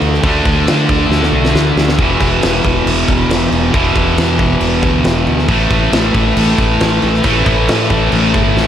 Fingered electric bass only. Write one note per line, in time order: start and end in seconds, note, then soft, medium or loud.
0.02 0.23 D2 medium
0.23 0.44 D2 loud
0.45 0.66 D2 loud
0.67 0.88 D3 medium
0.89 1.09 D2 loud
1.09 1.31 D2 loud
1.32 1.53 B1 medium
1.54 1.76 D2 loud
1.76 1.97 D2 medium
1.98 2.19 E1 loud
2.21 2.42 E1 loud
2.43 2.64 E1 medium
2.65 2.85 E1 loud
2.86 3.07 E1 loud
3.08 3.28 E1 medium
3.29 3.50 E1 medium
3.51 3.72 E1 medium
3.74 3.95 E1 loud
3.96 4.17 E1 medium
4.18 4.38 E2 loud
4.39 4.60 E1 loud
4.60 4.82 E1 loud
4.83 5.04 D2 medium
5.04 5.26 E1 loud
5.27 5.48 D2 medium
5.48 5.70 A1 loud
5.70 5.92 A1 loud
5.92 6.14 A1 loud
6.14 6.35 A1 loud
6.37 6.57 A1 loud
6.58 6.79 A1 medium
6.82 7.02 A1 loud
7.03 7.24 A1 loud
7.24 7.45 A1 loud
7.46 7.67 A1 loud
7.68 7.89 A2 medium
7.90 8.11 A1 loud
8.13 8.33 A1 loud
8.34 8.55 G1 medium
8.57 8.67 A1 loud